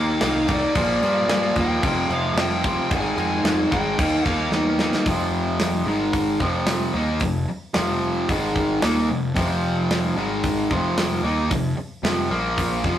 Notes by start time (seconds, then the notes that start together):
Already playing: D#2 D#3 A#3 D#4 D6
0.21 C2 D#3 A#3 D#4 F5, snare, crash
0.47 D#3 A#3 D#4, kick, crash
0.54 D5
0.75 A#1 A#2 F3 A#3, kick, crash
1.02 G2 A#2 F3 A#3, crash
1.28 G2 A#2 F3 A#3, snare, crash
1.54 D#2 A#2 F3 A#3, kick, crash
1.60 G5
1.82 F1 F2 C3 F3, kick, crash
2.09 F1 F2 C3 F3, crash
2.13 F5
2.34 F1 F2 C3, snare, crash
2.38 F3 G5
2.64 F2 C3 F3, kick, crash
2.90 G#1 G#2 D#3 G#3, kick, crash
2.97 G#5
3.17 F2 G#2 D#3 G#3, crash
3.43 F2 G#2 D#3 G#3, snare, crash
3.71 G#1 G#2 D#3 G#3 G5, kick, crash
3.98 D#2 D#3 A#3 D#4, kick, crash
4.25 D#2 D#3 A#3 D#4 F5, kick, crash
4.50 E2 D#3 A#3 D#4, snare
4.79 D#3 A#3 D#4, snare
4.93 snare
5.06 F1 F2 C3 F3, kick, open hi-hat
5.60 snare, open hi-hat
5.85 G#1 G#2 D#3 G#3
6.13 kick, open hi-hat
6.40 F1 F2 C3 F3, kick
6.66 snare, open hi-hat
6.94 D#2 D#3 A#3 D#4
7.20 F1 F2 C3, kick, open hi-hat
7.49 muted distorted electric guitar stroke, muted picked electric bass stroke
7.74 F1 F2 C3 F3, snare, open hi-hat
8.29 G#1 G#2 D#3 G#3, kick, open hi-hat
8.56 kick
8.82 D#2 D#3 A#3 D#4, snare, open hi-hat
9.08 F1 F2 C3
9.35 F1 F2 C3 F3, kick, open hi-hat
9.91 snare, open hi-hat
10.16 G#1 G#2 D#3 G#3
10.44 kick, open hi-hat
10.70 F1 F2 C3 F3, kick
10.98 snare, open hi-hat
11.23 D#2 D#3 A#3 D#4
11.51 F1 F2 C3, kick, open hi-hat
11.77 muted picked electric bass stroke, muted distorted electric guitar stroke
12.03 F1 F2 C3 F3, snare, open hi-hat
12.30 A#1 A#2 F3 A#3
12.58 kick, open hi-hat
12.84 F1 F2 C3 F3, kick